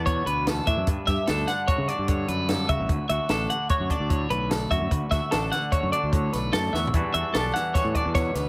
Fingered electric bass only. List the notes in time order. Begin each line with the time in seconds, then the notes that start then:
Already playing: E2
0.26 D2
0.67 A2
0.77 F#2
0.87 G2
1.08 G2
1.28 D2
1.78 C#3
1.98 G2
2.28 F#2
2.69 C#3
2.79 A1
2.89 D2
3.10 D2
3.29 A1
3.80 F#2
4.00 D2
4.30 B1
4.71 F#2
4.81 F#2
4.91 D2
5.11 D2
5.33 A1
5.83 F#2
6.03 D2
6.34 B1
6.54 F#2
6.73 E2
6.94 E2
7.14 E2
7.35 B1
7.85 A2
8.06 E2
8.35 D2